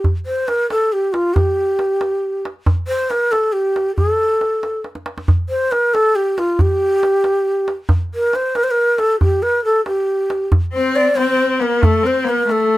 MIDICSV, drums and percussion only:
0, 0, Header, 1, 2, 480
1, 0, Start_track
1, 0, Tempo, 436364
1, 46, Time_signature, 6, 3, 24, 8
1, 14054, End_track
2, 0, Start_track
2, 0, Title_t, "Tombak"
2, 47, Note_on_c, 9, 64, 67
2, 157, Note_off_c, 9, 64, 0
2, 529, Note_on_c, 9, 63, 58
2, 639, Note_off_c, 9, 63, 0
2, 775, Note_on_c, 9, 63, 64
2, 885, Note_off_c, 9, 63, 0
2, 1253, Note_on_c, 9, 63, 65
2, 1363, Note_off_c, 9, 63, 0
2, 1495, Note_on_c, 9, 64, 83
2, 1605, Note_off_c, 9, 64, 0
2, 1969, Note_on_c, 9, 63, 59
2, 2079, Note_off_c, 9, 63, 0
2, 2210, Note_on_c, 9, 63, 66
2, 2320, Note_off_c, 9, 63, 0
2, 2699, Note_on_c, 9, 63, 61
2, 2809, Note_off_c, 9, 63, 0
2, 2930, Note_on_c, 9, 64, 92
2, 3040, Note_off_c, 9, 64, 0
2, 3415, Note_on_c, 9, 63, 56
2, 3525, Note_off_c, 9, 63, 0
2, 3662, Note_on_c, 9, 63, 58
2, 3772, Note_off_c, 9, 63, 0
2, 4136, Note_on_c, 9, 63, 58
2, 4246, Note_off_c, 9, 63, 0
2, 4373, Note_on_c, 9, 64, 62
2, 4483, Note_off_c, 9, 64, 0
2, 4853, Note_on_c, 9, 63, 52
2, 4963, Note_off_c, 9, 63, 0
2, 5094, Note_on_c, 9, 63, 54
2, 5204, Note_off_c, 9, 63, 0
2, 5329, Note_on_c, 9, 63, 48
2, 5439, Note_off_c, 9, 63, 0
2, 5448, Note_on_c, 9, 62, 54
2, 5558, Note_off_c, 9, 62, 0
2, 5565, Note_on_c, 9, 63, 67
2, 5675, Note_off_c, 9, 63, 0
2, 5693, Note_on_c, 9, 62, 70
2, 5803, Note_off_c, 9, 62, 0
2, 5809, Note_on_c, 9, 64, 83
2, 5919, Note_off_c, 9, 64, 0
2, 6295, Note_on_c, 9, 63, 57
2, 6405, Note_off_c, 9, 63, 0
2, 6541, Note_on_c, 9, 63, 62
2, 6651, Note_off_c, 9, 63, 0
2, 7016, Note_on_c, 9, 63, 62
2, 7126, Note_off_c, 9, 63, 0
2, 7249, Note_on_c, 9, 64, 80
2, 7359, Note_off_c, 9, 64, 0
2, 7734, Note_on_c, 9, 63, 63
2, 7844, Note_off_c, 9, 63, 0
2, 7965, Note_on_c, 9, 63, 65
2, 8075, Note_off_c, 9, 63, 0
2, 8446, Note_on_c, 9, 63, 58
2, 8556, Note_off_c, 9, 63, 0
2, 8677, Note_on_c, 9, 64, 90
2, 8787, Note_off_c, 9, 64, 0
2, 9167, Note_on_c, 9, 63, 56
2, 9277, Note_off_c, 9, 63, 0
2, 9407, Note_on_c, 9, 63, 58
2, 9517, Note_off_c, 9, 63, 0
2, 9883, Note_on_c, 9, 63, 53
2, 9993, Note_off_c, 9, 63, 0
2, 10130, Note_on_c, 9, 64, 75
2, 10240, Note_off_c, 9, 64, 0
2, 10363, Note_on_c, 9, 62, 23
2, 10473, Note_off_c, 9, 62, 0
2, 10846, Note_on_c, 9, 63, 58
2, 10956, Note_off_c, 9, 63, 0
2, 11331, Note_on_c, 9, 63, 61
2, 11441, Note_off_c, 9, 63, 0
2, 11569, Note_on_c, 9, 64, 88
2, 11679, Note_off_c, 9, 64, 0
2, 12059, Note_on_c, 9, 63, 55
2, 12169, Note_off_c, 9, 63, 0
2, 12292, Note_on_c, 9, 63, 55
2, 12402, Note_off_c, 9, 63, 0
2, 12778, Note_on_c, 9, 63, 52
2, 12888, Note_off_c, 9, 63, 0
2, 13011, Note_on_c, 9, 64, 96
2, 13121, Note_off_c, 9, 64, 0
2, 13498, Note_on_c, 9, 63, 48
2, 13608, Note_off_c, 9, 63, 0
2, 13742, Note_on_c, 9, 63, 52
2, 13852, Note_off_c, 9, 63, 0
2, 14054, End_track
0, 0, End_of_file